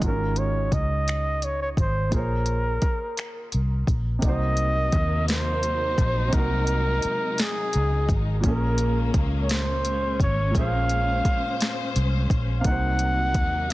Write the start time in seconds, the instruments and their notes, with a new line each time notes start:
Already playing: grand piano G#3
0.00 fingered electric bass G#1, grand piano D#4 F4 F#4, kick, closed hi-hat
0.06 grand piano C#4 A#4, flugelhorn A#4
0.36 flugelhorn C#5, closed hi-hat
0.72 fingered electric bass C#2, flugelhorn D#5, kick, closed hi-hat
1.08 finger snap, closed hi-hat
1.42 flugelhorn C#5, closed hi-hat
1.62 flugelhorn C#5
1.77 fingered electric bass G#1, flugelhorn C5, kick, closed hi-hat
2.09 fingered electric bass A#1, grand piano A#3 F4, kick, closed hi-hat
2.14 grand piano G#4 C5, flugelhorn A#4
2.19 grand piano C#5
2.46 closed hi-hat
2.82 kick, closed hi-hat
3.17 finger snap, closed hi-hat
3.52 fingered electric bass C2, closed hi-hat
3.87 fingered electric bass A#1, kick, closed hi-hat
4.19 grand piano C3 A#3, string section C3 F#3 D#4, kick, closed hi-hat
4.23 fingered electric bass C2, string section A#3, grand piano D#4 F#4, flugelhorn D#5
4.29 grand piano C5
4.57 closed hi-hat
4.92 fingered electric bass D#2, kick, closed hi-hat
5.28 flugelhorn C5, snare, closed hi-hat
5.63 closed hi-hat
5.98 fingered electric bass A#1, kick, closed hi-hat
6.28 grand piano C3 A#3, string section G#3
6.33 fingered electric bass C2, grand piano D#4 F#4, flugelhorn A#4, kick, closed hi-hat
6.39 grand piano A#4
6.67 closed hi-hat
7.02 muted fingered electric bass stroke, closed hi-hat
7.38 flugelhorn G#4, snare, closed hi-hat
7.73 fingered electric bass C#2, closed hi-hat
8.09 fingered electric bass G#1, kick, closed hi-hat
8.40 fingered electric bass A#1, grand piano A#2 A#3, string section A#3 C#4, kick, closed hi-hat
8.45 grand piano C#4 G#4, flugelhorn A#4
8.51 grand piano A#4
8.78 closed hi-hat
9.14 fingered electric bass C#2, kick, closed hi-hat
9.43 flugelhorn C#5
9.49 flugelhorn C5, snare, closed hi-hat
9.85 closed hi-hat
10.20 fingered electric bass G#1, flugelhorn C#5, kick, closed hi-hat
10.50 grand piano A#2 A#3
10.55 fingered electric bass A#1, grand piano C#4 G#4, string section C5, flugelhorn F5, kick, closed hi-hat
10.61 grand piano C5
10.89 closed hi-hat
11.25 muted fingered electric bass stroke, kick, closed hi-hat
11.61 snare, closed hi-hat
11.96 fingered electric bass C2, closed hi-hat
12.30 fingered electric bass A#1, kick, closed hi-hat
12.59 grand piano C3, flugelhorn F5
12.63 fingered electric bass C2, string section C3 F#3 A#3 D#4, grand piano A#3 D#4, flugelhorn F#5, kick, closed hi-hat
12.69 grand piano F#4 C5
12.99 closed hi-hat
13.34 fingered electric bass D#2, kick, closed hi-hat